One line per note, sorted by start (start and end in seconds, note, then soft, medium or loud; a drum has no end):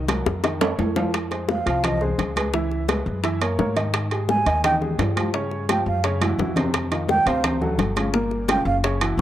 0.00 0.20 C2 medium
0.08 0.37 F#3 medium
0.08 0.38 F#4 medium
0.08 0.38 A#4 medium
0.08 high bongo medium
0.08 high conga loud
0.08 high timbale loud
0.26 0.75 F2 medium
0.26 high bongo medium
0.26 high conga soft
0.44 0.58 D#3 medium
0.44 0.58 D#4 medium
0.44 0.58 D#5 medium
0.44 high bongo medium
0.44 high conga soft
0.44 high timbale medium
0.61 0.90 A3 medium
0.61 0.90 A4 medium
0.61 0.90 C#5 medium
0.61 low bongo loud
0.61 high conga soft
0.61 high timbale loud
0.79 1.60 F2 medium
0.79 low bongo medium
0.79 high conga medium
0.79 low timbale medium
0.96 1.10 F3 medium
0.96 1.10 F4 medium
0.96 1.11 F5 medium
0.96 low bongo medium
0.96 high conga medium
0.96 low timbale medium
1.14 high bongo medium
1.14 high conga soft
1.14 high timbale medium
1.31 1.60 G#3 medium
1.31 1.60 G#4 medium
1.31 1.60 C5 medium
1.31 high bongo soft
1.31 high conga soft
1.31 high timbale medium
1.49 1.86 F5 medium
1.49 high bongo medium
1.49 high conga medium
1.66 2.15 C2 medium
1.66 1.80 F3 medium
1.66 1.81 F4 medium
1.66 1.81 F5 medium
1.66 high conga soft
1.66 high timbale medium
1.84 1.98 F3 medium
1.84 1.98 F4 medium
1.84 2.02 D#5 medium
1.84 1.98 F5 medium
1.84 high bongo medium
1.84 high conga soft
1.84 low conga medium
1.84 high timbale medium
2.01 2.30 G#3 medium
2.01 2.30 G#4 medium
2.01 2.30 C5 medium
2.01 high bongo soft
2.01 high conga soft
2.01 low conga medium
2.18 3.00 C#2 medium
2.18 high bongo soft
2.18 low bongo medium
2.18 high conga soft
2.18 high timbale medium
2.36 2.51 G#3 medium
2.36 2.51 G#4 medium
2.36 2.51 B4 medium
2.36 high bongo soft
2.36 high conga medium
2.36 high timbale medium
2.53 2.82 E3 medium
2.53 2.82 E4 medium
2.53 2.83 E5 medium
2.53 high bongo medium
2.53 high conga soft
2.71 high bongo soft
2.71 high conga soft
2.88 3.17 G#3 medium
2.88 3.17 G#4 medium
2.88 3.18 B4 medium
2.88 high bongo medium
2.88 high conga loud
2.88 high timbale medium
3.06 3.55 F#2 medium
3.06 high conga soft
3.23 3.38 E3 medium
3.23 3.38 E4 medium
3.23 3.38 E5 medium
3.23 high bongo medium
3.23 high conga soft
3.23 high timbale medium
3.41 3.56 A#3 medium
3.41 3.56 A#4 medium
3.41 3.56 C#5 medium
3.41 high bongo soft
3.41 high conga soft
3.41 high timbale loud
3.58 4.40 G#2 medium
3.58 3.73 A#3 medium
3.58 3.73 A#4 medium
3.58 3.74 C#5 medium
3.58 high bongo soft
3.58 low bongo medium
3.58 high conga medium
3.76 4.05 D#3 medium
3.76 4.05 D#4 medium
3.76 4.05 D#5 medium
3.76 high bongo soft
3.76 high conga medium
3.76 high timbale medium
3.94 high bongo medium
3.94 high conga soft
3.94 high timbale medium
4.11 4.40 G#3 medium
4.11 4.40 G4 medium
4.11 4.40 G#4 medium
4.11 high bongo soft
4.11 high conga soft
4.11 high timbale medium
4.29 4.62 G#5 medium
4.29 high bongo medium
4.29 high conga loud
4.46 4.95 D#2 medium
4.46 4.61 D#3 medium
4.46 4.61 D#4 medium
4.46 4.61 D#5 medium
4.46 high conga soft
4.46 high timbale medium
4.64 4.78 D#3 medium
4.64 4.78 D#4 medium
4.64 4.78 D#5 medium
4.64 4.75 G5 medium
4.64 high bongo medium
4.64 high conga soft
4.64 low conga medium
4.64 high timbale medium
4.81 5.10 G#3 medium
4.81 5.10 G4 medium
4.81 5.10 G#4 medium
4.81 high bongo soft
4.81 high conga soft
4.81 low conga medium
4.98 5.80 G2 medium
4.98 high bongo soft
4.98 low bongo medium
4.98 high conga soft
4.98 high timbale medium
4.98 low timbale medium
5.16 5.31 F3 medium
5.16 5.31 F4 medium
5.16 5.31 G4 medium
5.16 high bongo soft
5.16 high conga medium
5.16 high timbale medium
5.34 5.62 C#3 medium
5.34 5.63 C#4 medium
5.34 5.63 C#5 medium
5.34 high bongo medium
5.34 high conga soft
5.51 high bongo soft
5.51 high conga soft
5.69 5.97 F3 medium
5.69 5.98 F4 medium
5.69 5.98 G4 medium
5.69 5.86 G5 medium
5.69 high bongo medium
5.69 high conga loud
5.69 high timbale medium
5.86 6.35 F#2 medium
5.86 6.03 F5 medium
5.86 high conga soft
6.04 6.18 C#3 medium
6.04 6.19 C#4 medium
6.04 6.19 C#5 medium
6.04 high bongo medium
6.04 high conga soft
6.04 high timbale medium
6.21 6.36 E3 medium
6.21 6.36 E4 medium
6.21 6.36 F#4 medium
6.21 high bongo soft
6.21 high conga loud
6.21 high timbale medium
6.39 7.20 F2 medium
6.39 6.53 E3 medium
6.39 6.53 E4 medium
6.39 6.54 F#4 medium
6.39 high bongo soft
6.39 low bongo medium
6.39 low conga medium
6.56 6.85 C3 medium
6.56 6.85 C4 medium
6.56 6.85 C5 medium
6.56 high bongo soft
6.56 low conga loud
6.56 high timbale medium
6.73 high bongo medium
6.73 high conga soft
6.73 high timbale medium
6.91 7.20 D#3 medium
6.91 7.20 D#4 medium
6.91 7.20 F4 medium
6.91 high bongo soft
6.91 high conga soft
6.91 high timbale medium
7.09 7.29 G5 medium
7.09 high bongo medium
7.09 high conga medium
7.26 7.75 D2 medium
7.26 7.41 C3 medium
7.26 7.41 C4 medium
7.26 7.41 C5 medium
7.26 7.44 F5 medium
7.26 high conga soft
7.26 high timbale medium
7.44 7.58 C3 medium
7.44 7.59 C4 medium
7.44 7.59 C5 medium
7.44 high bongo medium
7.44 high conga soft
7.44 low conga medium
7.44 high timbale medium
7.61 7.90 F#3 medium
7.61 7.90 F#4 medium
7.61 7.90 A4 medium
7.61 high bongo soft
7.61 high conga soft
7.61 low conga medium
7.78 8.60 G1 medium
7.78 high bongo soft
7.78 low bongo medium
7.78 high conga soft
7.78 high timbale medium
7.96 8.11 C#3 medium
7.96 8.11 C#4 medium
7.96 8.11 F4 medium
7.96 high bongo soft
7.96 high conga medium
7.96 high timbale medium
8.14 8.42 A#2 medium
8.14 8.43 A#3 medium
8.14 8.43 A#4 medium
8.14 high bongo medium
8.14 high conga soft
8.31 high bongo soft
8.31 high conga soft
8.48 8.77 C#3 medium
8.48 8.78 C#4 medium
8.48 8.78 F4 medium
8.48 8.66 G5 medium
8.48 high bongo medium
8.48 high conga loud
8.48 high timbale medium
8.65 9.14 F#1 loud
8.65 8.77 F5 medium
8.65 high conga soft
8.83 8.98 C#3 medium
8.83 8.98 C#4 medium
8.83 8.98 C#5 medium
8.83 high bongo medium
8.83 high conga soft
8.83 high timbale medium
9.01 9.16 E3 medium
9.01 9.16 E4 medium
9.01 9.16 F#4 medium
9.01 high bongo soft
9.01 high conga soft
9.01 high timbale loud
9.17 9.21 F1 medium